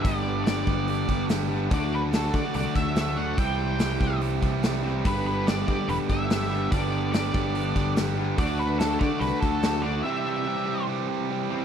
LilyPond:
<<
  \new Staff \with { instrumentName = "Lead electric guitar" } { \time 4/4 \key g \major \tempo 4 = 144 d''4 d''2 r4 | d''8 b'8 a'8 d''8 d''8 e''4 fis''8 | g''2 r2 | b'8 b'8 d''8 d''8 b'8 e''4. |
d''4 d''2 r4 | d''8 b'8 a'8 d''8 b'8 a'4 d''8 | e''2 r2 | }
  \new Staff \with { instrumentName = "Overdriven electric guitar" } { \time 4/4 \key g \major <g, d g b d' g'>4 <g b d' g'>8 <g b d' g'>8 <g, d g b d' g'>8 <g b d' g'>8 <g b d' g'>4 | <d fis a d' fis'>4 <fis a d' fis'>8 <a d' fis'>8 <d fis a d' fis'>8 <a d' fis'>8 <fis a d' fis'>4 | <c e g e' g'>4 <e g e' g'>8 <g e' g'>8 <c e g e' g'>8 <g e' g'>8 <e g e' g'>4 | <g, d g b d' g'>4 <g b d' g'>8 <g b d' g'>8 <g, d g b d' g'>8 <g b d' g'>8 <g b d' g'>4 |
<g, d g b d' g'>4 <g b d' g'>8 <g b d' g'>8 <g, d g b d' g'>8 <g b d' g'>8 <g b d' g'>4 | <d a d' fis'>4 <d a d' fis'>8 <a d' fis'>8 <d a d' fis'>8 <a d' fis'>8 <d a d' fis'>4 | <c e g c' g'>4 <e g c' g'>8 <g c' g'>8 <c e g c' g'>8 <g c' g'>8 <e g c' g'>4 | }
  \new Staff \with { instrumentName = "Distorted electric guitar" } { \clef bass \time 4/4 \key g \major <g, d g>2.~ <g, d g>8 <g, d g>8 | <d a d'>2.~ <d a d'>8 <d a d'>8 | <c g c'>2.~ <c g c'>8 <c g c'>8 | <g, d g>2.~ <g, d g>8 <g, d g>8 |
<g, d g>2.~ <g, d g>8 <g, d g>8 | <d a d'>2.~ <d a d'>8 <d a d'>8 | <c g c'>2.~ <c g c'>8 <c g c'>8 | }
  \new Staff \with { instrumentName = "Picked electric bass" } { \clef bass \time 4/4 \key g \major g,,4. g,,4 g,,4. | d,4. d16 r16 c,16 r16 d,4. | c,4. c,4 c,4. | g,,4. g,16 r16 e,,16 r16 g,,4. |
g,,4. g,,4 g,,4. | d,4. d16 r16 c,16 r16 d,4. | r1 | }
  \new DrumStaff \with { instrumentName = "Drums" } \drummode { \time 4/4 <hho bd>4 <hho sn>8 bd8 hho8 bd8 <hho sn>4 | <hho bd>4 <hho sn>8 bd8 hho8 bd8 <hho sn>4 | <hho bd>4 <hho sn>8 bd8 hho8 bd8 <hho sn>4 | <hho bd>4 <hho sn>8 bd8 hho8 bd8 <hho sn>4 |
<hho bd>4 <hho sn>8 bd8 hho8 bd8 <hho sn>4 | <hho bd>4 <hho sn>8 bd8 hho8 bd8 <hho sn>4 | r4 r4 r4 r4 | }
>>